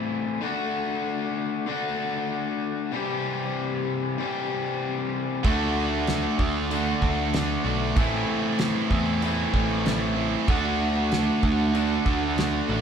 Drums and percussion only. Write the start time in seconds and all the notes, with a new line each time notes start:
5.44 kick, crash
6.07 snare, crash
6.39 kick
6.71 crash
7.02 kick
7.34 snare, crash
7.96 kick, crash
8.59 snare, crash
8.91 kick
9.22 crash
9.54 kick
9.86 snare, crash
10.48 kick, crash
11.12 snare, crash
11.43 kick
11.75 crash
12.06 kick
12.38 snare, crash